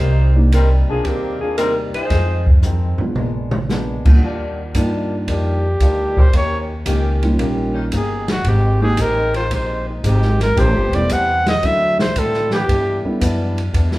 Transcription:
Already playing: saxophone section A#3 D#4 G4 C5
0.00 upright bass C2, steel-string acoustic guitar C3 G3 A#3 D#4
0.35 grand piano A#3 D4 D#4 G4
0.52 steel-string acoustic guitar C3 G3 A#3 D#4, saxophone section G3 C4 D#4 A#4, hi-hat pedal, ride
0.88 upright bass B1, saxophone section F3 A#3 D4 G#4
1.04 upright bass D#2, steel-string acoustic guitar C3 G3 A#3 D#4, saxophone section D#3 A#3 C4 G4, kick, ride
1.41 saxophone section F3 A#3 D4 G#4
1.57 steel-string acoustic guitar C3 G3 A#3 D#4, saxophone section G3 C4 D#4 A#4, hi-hat pedal, ride
1.94 saxophone section G#3 D#4 F4 C5, muted upright bass stroke, ride
2.10 upright bass F2, steel-string acoustic guitar F2 D#3 G#3 C4, kick, snare, ride
2.47 kick
2.63 steel-string acoustic guitar F2 D#3 G#3 C4, floor tom, hi-hat pedal
2.98 grand piano G#3 B3 D4 F4, muted upright bass stroke, floor tom
3.16 upright bass A#1, steel-string acoustic guitar A#2 G#3 B3 D4, mid tom
3.51 mid tom
3.69 steel-string acoustic guitar A#2 G#3 B3 D4, snare, hi-hat pedal
4.05 grand piano D#2 G3 A#3 D4 F4, muted upright bass stroke, kick, crash
4.22 upright bass D#2, steel-string acoustic guitar D#3 G3 D4 F4, saxophone section D#3 G3 D4 F4
4.74 upright bass G2, steel-string acoustic guitar D#3 G3 D4 F4, grand piano G3 A#3 D4 D#4 F4, kick, hi-hat pedal, ride
5.27 upright bass F2, steel-string acoustic guitar D#3 G3 D4 F4, kick, ride
5.32 trumpet G4
5.80 upright bass D2, steel-string acoustic guitar D#3 G3 D4 F4, kick, hi-hat pedal, ride
6.16 saxophone section D#3 A#3 C#4 G4, trumpet C5, kick
6.33 upright bass D#2, steel-string acoustic guitar D#3 A#3 C#4 G4, ride
6.37 trumpet C#5
6.85 upright bass C#2, steel-string acoustic guitar D#3 A#3 C#4 G4, saxophone section D#3 A#3 C#4 G4, kick, hi-hat pedal, ride
7.23 grand piano G3 A#3 C#4 D#4 F4, ride
7.38 upright bass A#1, steel-string acoustic guitar D#3 A#3 C#4 G4, kick, ride
7.74 saxophone section D#3 A#3 C#4 D#4
7.91 upright bass G1, steel-string acoustic guitar D#3 A#3 C#4 G4, kick, hi-hat pedal, ride
7.96 trumpet G#4
8.28 trumpet F#4, snare, ride
8.44 upright bass G#1, steel-string acoustic guitar G#3 C4 D#4 G4, kick, ride
8.48 trumpet G4
8.80 saxophone section D#3 G#3 C4 G4, grand piano G#3 A#3 C4 D#4 G4, trumpet G#4
8.97 upright bass A1, steel-string acoustic guitar G#3 C4 D#4 G4, kick, hi-hat pedal, ride
9.01 trumpet A#4
9.34 saxophone section D#3 G#3 C4 F4, trumpet C5, ride
9.51 upright bass A#1, steel-string acoustic guitar G#3 C4 D#4 G4, trumpet C5, kick, ride
9.89 trumpet D#4
10.04 upright bass G#1, steel-string acoustic guitar G#3 C4 D#4 G4, trumpet G4, kick, hi-hat pedal, ride
10.22 snare
10.40 trumpet A#4, snare, ride
10.55 upright bass A1, saxophone section C3 A3 B3 G4, steel-string acoustic guitar A3 C4 G4 B4, kick, ride
10.60 trumpet C5
10.74 upright bass G1
10.92 upright bass E1, grand piano G3 B3 C4 E4 A4, trumpet D5, ride
11.09 upright bass E2, steel-string acoustic guitar A3 C4 G4 B4, trumpet F#5, kick, hi-hat pedal, ride
11.47 trumpet D#5, snare, ride
11.62 upright bass D2, steel-string acoustic guitar D3 F#3 C4 E4, grand piano F#3 C4 D4 E4 A4, trumpet E5, kick, ride
11.99 trumpet C5, snare
12.15 upright bass A2, steel-string acoustic guitar D3 F#3 C4 E4, trumpet A4, kick, hi-hat pedal, ride
12.34 snare
12.51 saxophone section E3 B3 D4 G4, trumpet G4, snare
12.67 steel-string acoustic guitar G2 E3 B3 D4, upright bass G2, kick, ride
13.04 grand piano G3 B3 D4 E4 A4, muted upright bass stroke
13.20 upright bass F#2, steel-string acoustic guitar G2 E3 B3 D4, kick, hi-hat pedal, ride
13.58 ride
13.73 upright bass E2, steel-string acoustic guitar G2 E3 B3 D4, kick, ride
13.91 snare

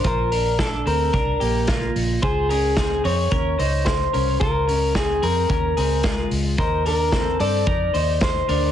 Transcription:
0.04 fingered electric bass A#1, clean electric guitar F4 A#4 C5, kick, closed hi-hat
0.32 clean electric guitar D4 A#4, open hi-hat
0.59 clean electric guitar D4 A4, kick, snare, closed hi-hat
0.86 fingered electric bass D2, clean electric guitar C4 A4 A#4, open hi-hat
1.13 fingered electric bass C2, clean electric guitar D4 A#4, kick, closed hi-hat
1.40 fingered electric bass A#1, clean electric guitar A#3 G4, open hi-hat
1.67 clean electric guitar A#3 F4, kick, snare, closed hi-hat
1.96 fingered electric bass A#1, open hi-hat
2.22 fingered electric bass C#2, clean electric guitar F4 G#4 C5, kick, closed hi-hat
2.49 clean electric guitar C#4 G#4 A#4, open hi-hat
2.77 clean electric guitar C4 G#4, kick, snare, closed hi-hat
3.04 fingered electric bass F2, clean electric guitar C4 G#4 C#5, open hi-hat
3.31 fingered electric bass D#2, clean electric guitar C#4 A#4, kick, closed hi-hat
3.59 fingered electric bass C#2, clean electric guitar D#4 C5, open hi-hat
3.86 clean electric guitar C5, kick, snare, closed hi-hat
4.13 fingered electric bass C2, clean electric guitar C#4 A#4, open hi-hat
4.40 fingered electric bass C#2, clean electric guitar F4 A#4 C5, kick, closed hi-hat
4.68 clean electric guitar C#4 A#4, open hi-hat
4.95 clean electric guitar C4 G#4, kick, snare, closed hi-hat
5.22 fingered electric bass F2, clean electric guitar C4 G#4 A#4, open hi-hat
5.49 fingered electric bass D#2, clean electric guitar C#4 A#4, kick, closed hi-hat
5.77 fingered electric bass C#2, clean electric guitar C4 G#4, open hi-hat
6.03 clean electric guitar G#3 F4, kick, snare, closed hi-hat
6.31 fingered electric bass C#2, open hi-hat
6.58 fingered electric bass D#2, clean electric guitar D#4 A#4 C5, kick, closed hi-hat
6.86 clean electric guitar D4 A#4, open hi-hat
7.12 clean electric guitar C4 A4, kick, snare
7.40 fingered electric bass G2, clean electric guitar C4 A4 D5, open hi-hat
7.66 fingered electric bass F2, clean electric guitar D#4 A#4, kick, closed hi-hat
7.94 fingered electric bass D#2, clean electric guitar D#4 C5, open hi-hat
8.21 clean electric guitar C5, kick, snare, closed hi-hat
8.49 fingered electric bass D2, clean electric guitar D4 A#4, open hi-hat

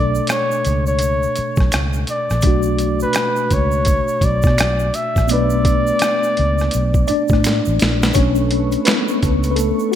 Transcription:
Already playing: fingered electric bass B1, tine electric piano B2 A3 D4 A4, muted trumpet D5
0.15 shaker
0.27 muted trumpet C#5, finger snap, cross-stick, closed hi-hat, shaker
0.51 shaker
0.65 fingered electric bass C#2, closed hi-hat, shaker
0.86 muted trumpet C#5, shaker
0.99 closed hi-hat, shaker
1.23 shaker
1.36 muted fingered electric bass stroke, closed hi-hat, shaker
1.56 fingered electric bass B1, kick, shaker
1.60 cross-stick
1.72 fingered electric bass C#2, finger snap, cross-stick, closed hi-hat, shaker
1.93 shaker
2.07 muted trumpet D5, closed hi-hat, shaker
2.30 fingered electric bass A#1, cross-stick, shaker
2.41 fingered electric bass B1, tine electric piano B2 A3 D4, kick, closed hi-hat, shaker
2.47 tine electric piano F#4
2.63 shaker
2.79 closed hi-hat, shaker
3.00 muted trumpet B4, shaker
3.13 finger snap, cross-stick, closed hi-hat, shaker
3.36 shaker
3.51 fingered electric bass C#2, muted trumpet C#5, kick, closed hi-hat, shaker
3.71 shaker
3.85 kick, closed hi-hat, shaker
4.08 shaker
4.21 fingered electric bass B1, muted trumpet D5, kick, closed hi-hat, shaker
4.42 fingered electric bass B2, kick, shaker
4.47 cross-stick
4.58 fingered electric bass B1, finger snap, cross-stick, closed hi-hat, shaker
4.79 shaker
4.94 muted trumpet E5, closed hi-hat, shaker
5.16 fingered electric bass A#1, kick, cross-stick, shaker
5.27 tine electric piano A3 B3 D4, muted trumpet D5, closed hi-hat, shaker
5.32 fingered electric bass B1, tine electric piano B4
5.50 shaker
5.65 kick, closed hi-hat, shaker
5.87 shaker
5.99 finger snap, cross-stick, closed hi-hat, shaker
6.23 shaker
6.37 fingered electric bass C#2, closed hi-hat
6.58 cross-stick, shaker
6.71 fingered electric bass B1, closed hi-hat, shaker
6.94 kick, shaker
7.07 tine electric piano D4 D5, muted fingered electric bass stroke, closed hi-hat, shaker
7.28 fingered electric bass A2, kick, shaker
7.33 cross-stick
7.44 finger snap, snare, closed hi-hat, shaker
7.65 fingered electric bass A1, shaker
7.79 fingered electric bass A#1, snare, closed hi-hat, shaker
8.03 snare, shaker
8.13 fingered electric bass B1, tine electric piano A3 C#4 D4 C#5, analog synth pad A4 B4 C#6, kick, closed hi-hat, shaker
8.35 shaker
8.51 closed hi-hat
8.72 closed hi-hat, shaker
8.85 tine electric piano B3 B4, finger snap, snare, clap, closed hi-hat, shaker
9.08 shaker
9.23 fingered electric bass C#2, kick, closed hi-hat, shaker
9.43 closed hi-hat, shaker
9.51 tine electric piano B4
9.56 tine electric piano A3 A4, closed hi-hat, shaker
9.79 shaker
9.92 tine electric piano F#4

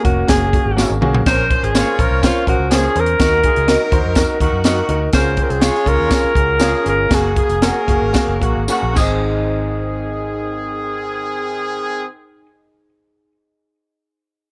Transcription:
0.03 fingered electric bass F1, grand piano A#3 C#4 F#4 A#4, alto saxophone F#4, kick, closed hi-hat
0.28 fingered electric bass F#1, grand piano A#3 C#4 F#4 G#4, alto saxophone G#4, kick, snare, closed hi-hat, tambourine
0.53 grand piano A#3 C#4 F#4 G#4, kick, closed hi-hat
0.66 fingered electric bass G#1
0.76 grand piano A#3 C#4 F#4 G#4, clean electric guitar A#3 F#4 G#4 C#5, snare, tambourine
0.90 fingered electric bass G#1
1.01 fingered electric bass B1, grand piano A#3 C#4 F#4 G#4, mid tom
1.15 floor tom
1.26 fingered electric bass A#1, horn section F3 C#4 A#4, grand piano C#4 A#4 C5, alto saxophone C5, kick, snare, closed hi-hat, tambourine
1.50 horn section F3 C#4 C5, grand piano C#4 A#4 C5, kick, closed hi-hat
1.63 fingered electric bass G#1, alto saxophone G#4, closed hi-hat
1.73 horn section A#3 F4 C#5, clean electric guitar A#3 C#4 F4 C5, grand piano C#4 A#4 C5, snare, closed hi-hat, tambourine
1.98 fingered electric bass A#1, grand piano C#4 A#4 C5, alto saxophone A#4, kick, closed hi-hat
2.11 fingered electric bass C2
2.22 grand piano C#4 A#4 C5, alto saxophone F4, kick, snare, closed hi-hat, tambourine
2.46 fingered electric bass A#1, horn section F3 C#4 A#4, grand piano C#4 A#4 C5, alto saxophone F#4, kick, closed hi-hat
2.59 fingered electric bass C#2
2.70 horn section F3 C#4 G#4, clean electric guitar A#3 C#4 F4 C5, grand piano C#4 A#4 C5, alto saxophone G#4, snare, closed hi-hat, tambourine
2.95 fingered electric bass E2, grand piano C#4 A#4 C5, closed hi-hat
3.00 alto saxophone A#4
3.06 closed hi-hat
3.19 fingered electric bass D#2, horn section D#3 A#3 F#4, grand piano D#4 F#4 A#4, kick, snare, closed hi-hat, tambourine
3.43 horn section G#3 F4 G#4, grand piano D#4 F#4 G#4, kick, closed hi-hat
3.56 fingered electric bass C#2, closed hi-hat
3.67 horn section F#3 D#4 A#4, grand piano D#4 F#4 A#4, clean electric guitar D#4 F#4 A#4 D#5, snare, closed hi-hat, tambourine
3.91 fingered electric bass D#2, grand piano D#4 F#4 C5, kick, closed hi-hat
4.05 fingered electric bass F2
4.15 grand piano D#4 F#4 A#4, kick, snare, closed hi-hat, tambourine
4.40 fingered electric bass D#2, horn section D#3 A#3 F#4, grand piano D#4 F#4 A#4, kick, closed hi-hat
4.53 fingered electric bass F#2
4.64 horn section D#3 A#3 F#4, grand piano D#4 F#4 A#4, clean electric guitar D#4 F#4 A#4 D#5, snare, closed hi-hat, tambourine
4.87 fingered electric bass D2, grand piano D#4 F#4 A#4, closed hi-hat
5.13 fingered electric bass C#2, horn section A#3 F#4 A#4, grand piano C#4 F4 G#4, alto saxophone C5, kick, snare, closed hi-hat, tambourine
5.37 horn section C4 G#4 C5, grand piano C#4 F4 G#4, kick, closed hi-hat
5.43 alto saxophone A#4
5.50 fingered electric bass C2, alto saxophone G#4, closed hi-hat
5.60 horn section G#3 F4 C#5, grand piano C#4 F4 G#4, clean electric guitar F4 G#4 C#5 F5, snare, closed hi-hat, tambourine
5.75 snare
5.85 fingered electric bass C#2, grand piano C#4 F4 G#4, alto saxophone A#4, kick, closed hi-hat
5.99 fingered electric bass D#2
6.09 grand piano C#4 F4 G#4, kick, snare, closed hi-hat, tambourine
6.24 muted fingered electric bass stroke
6.34 fingered electric bass C#2, horn section A#3 F#4 A#4, grand piano C#4 F4 G#4, kick, closed hi-hat
6.59 horn section F3 C#4 G#4, grand piano C#4 F4 G#4, clean electric guitar F4 G#4 C#5 F5, snare, closed hi-hat, tambourine
6.84 fingered electric bass G1, grand piano C#4 F4 G#4, closed hi-hat
6.89 alto saxophone A#4
7.09 fingered electric bass F#1, horn section C#3 A#3 F#4, grand piano A#3 F#4 G#4, kick, snare, closed hi-hat, tambourine
7.15 alto saxophone G#4
7.35 horn section C#3 A#3 G#4, grand piano A#3 F#4 G#4, kick, closed hi-hat
7.50 fingered electric bass F1, closed hi-hat
7.61 horn section F#3 C#4 A#4, grand piano A#3 F#4 A#4, clean electric guitar C#4 G#4 A#4 F#5, snare, closed hi-hat, tambourine
7.87 fingered electric bass F#1, grand piano A#3 F#4 G#4, kick, closed hi-hat
8.02 fingered electric bass G#1
8.13 grand piano A#3 F#4 G#4, kick, snare, closed hi-hat, tambourine
8.27 fingered electric bass F#1
8.40 fingered electric bass A#1, horn section C#3 A#3 F#4, grand piano A#3 F#4 G#4, kick, closed hi-hat
8.56 fingered electric bass G#1
8.67 horn section C#3 A#3 F#4, grand piano A#3 F#4 G#4, clean electric guitar C#4 G#4 A#4 F#5, tambourine
8.83 fingered electric bass A#1
8.93 horn section D#3 G#4, grand piano C4 D#4, clean electric guitar D#4, kick, crash, tambourine
8.97 fingered electric bass G#1, horn section C4, clean electric guitar G#4 C5 D#5, grand piano G#4

